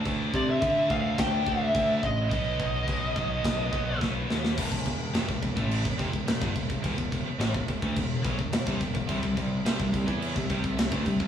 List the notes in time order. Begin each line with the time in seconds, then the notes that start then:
Already playing: D3 A3 D4
0.06 D2, kick, crash
0.34 C3 D5, kick
0.50 E5
0.62 D3, kick, crash
0.90 D2 F5, kick
1.17 D2 D3 A3 D4 G5, kick, snare, crash
1.46 D2 D3 A3 D4 E5, kick
1.75 D2, kick, crash
2.03 A1 D#5, kick
2.30 B1 B2 F#3 B3, kick, crash
2.59 B1, kick
2.88 B1, kick, crash
3.16 B1, kick
3.44 B1, kick, snare, crash
3.72 B1 B2 F#3 B3, kick
4.00 B1 B2 F#3 B3, kick, snare
4.30 D#2, snare
4.45 snare
4.57 E1 E2 B2, kick, crash
4.72 E1 E2 B2, kick
4.86 E1 E2 B2, kick, crash
5.13 F1 F2 C3, snare, crash
5.28 E1 E2 B2, kick
5.42 E1 E2 B2, kick, crash
5.56 A1 A2 E3 A3, kick
5.71 crash
5.84 E1 E2 B2, kick
5.98 F1 F2 C3, kick, crash
6.12 E1 E2 B2, kick
6.27 E1 E2 B2, snare, crash
6.41 G1 G2 D3, kick
6.55 E1 E2 B2, kick, crash
6.69 E1 E2 B2, kick
6.83 E1 E2 B2, kick, crash
6.97 E1 E2 B2, kick
7.12 E1 E2 B2, kick, crash
7.25 muted picked electric bass stroke, muted distorted electric guitar stroke
7.38 A1 A2 E3, snare, crash
7.54 E1 E2 B2, kick
7.68 E1 E2 B2, kick, crash
7.82 D2 D3 A3, kick
7.96 E1 E2 B2, kick, crash
8.24 B1 B2 F#3, kick, crash
8.39 E1 E2 B2, kick
8.53 E1 E2 B2, snare, crash
8.67 C2 C3 G3, kick
8.81 E1 E2 B2, kick, crash
8.95 E1 E2 B2, kick
9.08 C2 C3 G3, kick, crash
9.22 C2 C3 G3, kick
9.37 C2 C3 G3, kick, crash
9.65 C2 C3 G3, snare, crash
9.79 C2 C3 G3, kick
9.93 C2 C3 G3, kick, crash
10.06 E2 E3 B3 E4, kick
10.22 crash
10.35 C2 C3 G3, kick
10.49 C2 C3 G3, kick, crash
10.64 C2 C3 G3, kick
10.77 C2 C3 G3, snare, crash
10.91 D2 D3 A3, kick
11.05 C2 C3 G3, kick, crash
11.20 C2 C3 G3, kick